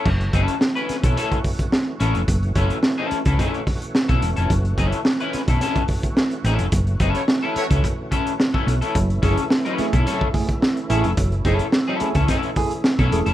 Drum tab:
CC |x---------------|----------------|----------------|----------------|
HH |-xxx-xxxxxox--xx|xxxx--xxxxox-xxx|xxxx-xxxxxox-xxx|xxxx--xxx-xx--xx|
SD |----o-o-----o---|----o-------o---|----o-o-o---o---|----o-------o---|
BD |o-o----o-ooo----|o-o----oo-o--o--|o-o----o-ooo----|o-o----oo-o--o--|

CC |----------------|----------------|
HH |xxxx-xxxx-ox-xxx|xxxx--xxxxox-xxx|
SD |----o-o-o---o---|----o---o---o---|
BD |o-o----o-ooo----|o-o----oo-o--o--|